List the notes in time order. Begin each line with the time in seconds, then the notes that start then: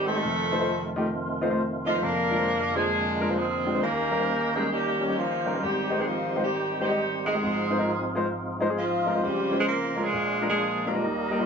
Already playing: G#1 G#2 D#3 G3 C4 G4
0.06 G#3 A3 C4 D#4 G4 A4 C5
0.15 G#3 D#4 G4 D#5
0.23 F1 F2 A3 F4
0.51 A3 D#4 F4 C5
0.59 A3 D#4 F4 C5
0.96 A3 D#4 F4 G4
1.41 A3 D#4 F4 C5
1.50 A3 D#4 F4 C5
1.85 F3 A3 D#4 F4 D#5
1.93 A3 D#4 F4 C5
2.02 F1 F2 D3 G#3 A#3 D4 A#4
2.30 G#3 D4 F4 A#4
2.38 G#3 D4 F4 C5
2.75 G#3 D4 F4 G#4 C5
3.20 G#3 D4 F4 A#4
3.28 G#3 D4 F4 C5
3.37 C4 G#4 C5
3.65 G#3 D4 F4 G4
3.73 G#3 D4 F4 C5
3.82 D#2 D#3 A#3 C#4 G4 A#4
4.10 G3 C#4 D#4 A#4
4.19 G3 C#4 D#4 C5
4.55 G3 G#3 C#4 D#4 G#4 A#4
4.72 G3 A#3 C#4 G4
5.01 G3 C#4 D#4 C#5
5.08 G3 C#4 D#4 C#5
5.17 F3 A#3 C#4 F4
5.45 G3 C#4 D#4 A#4
5.54 F#3 G3 C#4 D#4 A#4
5.62 G#1 G#2 G3 C4 D#4 G4
5.90 G#3 D#4 G4 C5
5.98 G#3 D#4 G4 G#4 C5
6.07 F3 C4 F4
6.36 G#3 D#4 G4 C5
6.44 G3 C4 D#4 G4
6.80 G3 G#3 C4 D#4 G4 C5
6.88 G#3 D#4 G4 D#5
7.25 G#3 C4 D#4 G4 G#4 D#5
7.33 G#3 D#4 G4 D#5
7.42 G#1 G#2 F3 D#4 F4
7.70 G#3 D#4 F4 C5
7.78 G#3 D#4 F4 A#4
8.15 G#3 D#4 F4 C5
8.60 G#3 D#4 F4 C5
8.69 G#3 D#4 F4 G#4
8.78 F3 C4 F4
9.06 G#3 D#4 F4 A#4
9.14 G#3 D#4 F4 C5
9.22 C#2 C#3 G3 C4 G4
9.51 G#3 C#4 F4 C5
9.58 G#3 C#4 F4 G#4 C5
9.66 A#3 F4 A#4
9.96 G#3 C#4 F4 A#4
10.03 G#3 D4 F4 G#4
10.12 A#1 A#2 A#3 D4
10.41 G#3 D4 F4 A#4
10.48 G#3 D4 F4 G#4
10.85 G3 G#3 A#3 D4 D#4 F4 G4 A#4
10.94 G#3 D4 F4 A#4
11.02 D#2 D#3 G3 D#4 A#4
11.30 G3 A#3 D#4 A#4
11.39 G3 A#3 D#4 F4